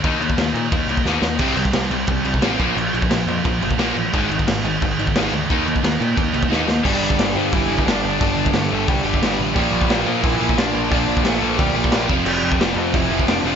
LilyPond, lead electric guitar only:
\new Staff \with { instrumentName = "Lead electric guitar" } { \time 4/4 \key g \dorian \tempo 4 = 177 r1 | r1 | r1 | r1 |
r1 | <g g'>4. <f f'>8 <e e'>4 <d' d''>4 | <d' d''>4 <a a'>4 <g g'>8 <g g'>4 r8 | <g g'>4. <f f'>8 <e e'>4 <d' d''>4 |
<d' d''>4 <a a'>4 <g g'>8 <g g'>4 r8 | <g g'>4 <g g'>8 <f f'>8 <e e'>4 <d' d''>4 | }